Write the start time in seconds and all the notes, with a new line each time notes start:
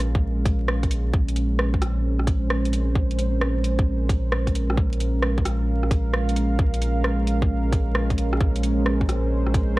Already playing: A#1 G#3 C#4 A#4 F5
0.00 cross-stick, closed hi-hat
0.15 kick
0.45 kick, closed hi-hat
0.68 cross-stick
0.83 kick, closed hi-hat
0.91 closed hi-hat
1.13 A#1 G#3 C#4 A#4 C5, kick
1.28 closed hi-hat
1.36 closed hi-hat
1.59 cross-stick
1.74 kick
1.82 cross-stick, closed hi-hat
2.19 cross-stick
2.27 kick, closed hi-hat
2.50 cross-stick
2.65 closed hi-hat
2.73 closed hi-hat
2.95 kick
3.11 closed hi-hat
3.19 closed hi-hat
3.41 cross-stick
3.64 closed hi-hat
3.79 kick
4.09 kick, closed hi-hat
4.32 cross-stick
4.47 kick, closed hi-hat
4.55 closed hi-hat
4.70 cross-stick
4.77 F5, kick
4.93 closed hi-hat
5.00 closed hi-hat
5.23 cross-stick
5.38 kick
5.45 cross-stick, closed hi-hat
5.83 cross-stick
5.91 kick, closed hi-hat
6.13 cross-stick
6.29 closed hi-hat
6.36 closed hi-hat
6.59 kick
6.74 closed hi-hat
6.82 closed hi-hat
7.04 cross-stick
7.27 closed hi-hat
7.42 kick
7.72 kick, closed hi-hat
7.95 cross-stick
8.10 kick, closed hi-hat
8.18 closed hi-hat
8.33 cross-stick
8.41 A#1 C5, kick
8.56 closed hi-hat
8.63 closed hi-hat
8.86 cross-stick
9.01 kick
9.09 cross-stick, closed hi-hat
9.46 cross-stick
9.54 kick, closed hi-hat